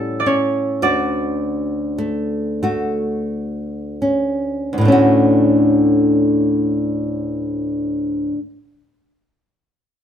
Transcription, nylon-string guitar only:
Already playing: A2 G3 C#4 G4
0.26 C#4
0.82 D2 F#4
1.98 A3
2.63 A3 F#4
4.02 C#4
4.73 D2
4.78 A2 D3
4.85 A3 C#4
4.92 F#4

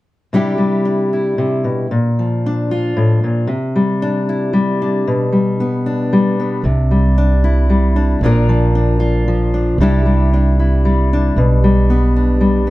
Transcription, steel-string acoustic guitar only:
0.33 C3 G3 D4 E4 G4
0.58 G3
0.85 D4
1.13 E4
1.38 C3
1.64 B2
1.91 A#2
2.19 F3
2.46 D4
2.71 F4
2.97 A2
3.24 A#2
3.47 C3
3.76 G3
4.02 D4
4.29 E4
4.53 G3
4.82 D4
5.07 B2
5.32 G3
5.60 B3
5.86 D4
6.13 G3
6.40 B3
6.65 C3
6.91 G3
7.18 D4
7.44 E4
7.70 G3
7.96 D4
8.23 A#2 F3 D4 F4 A#4
8.49 F3
8.75 D4
9.00 F4
9.28 F3
9.54 D4
9.80 C3 G3 D4 E4 G4
10.05 G3
10.33 D4
10.60 E4
10.85 G3
11.13 D4
11.38 B2
11.64 G3
11.90 B3
12.16 D4
12.41 G3

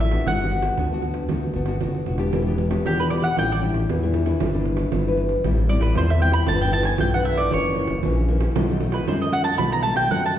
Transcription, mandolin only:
0.00 E5
0.27 F#5
2.86 G4
3.00 B4
3.10 D5
3.24 F#5
3.39 G5
3.52 D5
5.69 D5
5.82 B4
5.97 C5
6.10 E5
6.22 G5
6.33 B5
6.48 A5
6.61 G5
6.73 A5
6.85 G#5
7.00 G5
7.14 F#5
7.25 E5
7.37 D5
7.53 C#5
8.94 B4
9.08 C5
9.22 D#5
9.33 F#5
9.44 A5
9.58 B5
9.72 A#5
9.83 A5
9.97 G5
10.11 F#5
10.26 A5

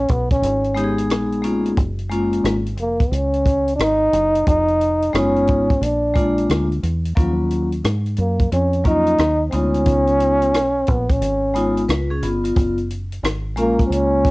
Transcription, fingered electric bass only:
0.09 B1
0.42 G#1
1.09 A#1
1.77 F#1
2.44 G#1
2.78 F1
3.12 C#2
3.79 G#1
4.13 F#1
4.47 F1
5.14 F#1
5.49 G#1
5.81 A#1
6.49 D2
6.83 E2
7.17 D#2
7.84 G#2
8.18 F#2
8.52 F2
9.19 D#2
9.53 D2
9.86 C#2
10.54 B1
10.88 A#1
11.21 G#1
11.89 C#2
12.22 G1
12.56 F#1
13.23 G#1
13.57 A#1
13.90 C#2

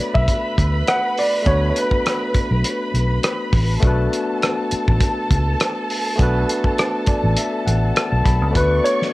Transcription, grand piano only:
Already playing: D5
0.14 E5
0.88 F#5
1.19 D5
1.47 C#5
1.70 C#5
1.78 B4
8.56 B4
8.84 C#5

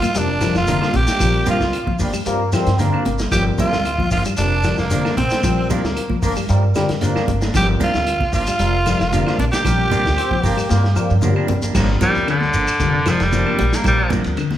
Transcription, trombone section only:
2.01 G3
2.27 A#3
2.54 C4
2.81 A#3
6.22 A#3
6.49 G3
6.76 G3
7.02 A#3
10.17 C4
10.43 A#3
10.71 A#3
10.97 A#3
11.24 G3

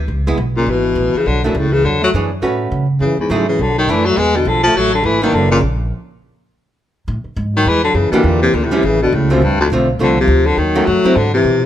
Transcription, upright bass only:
0.08 C#2
0.38 B1
0.66 G#1
0.95 A1
1.26 B1
1.55 C#2
1.84 E2
2.14 F#2
2.42 A2
2.72 C#3
3.00 F#2
3.18 muted upright bass stroke
3.30 G#2
3.59 B1
3.88 F#2
4.17 E2
4.45 B1
4.75 A1
5.04 G#1
5.32 F#1
5.61 A#1
7.08 A2
7.24 muted upright bass stroke
7.36 G#2
7.66 E2
7.94 F#2
8.12 muted upright bass stroke
8.24 E2
8.54 D2
8.83 A1
9.13 C#2
9.42 D2
9.70 B1
9.99 C2
10.28 D2
10.57 D#2
10.87 F#2
11.05 muted upright bass stroke
11.16 G#2
11.45 B2

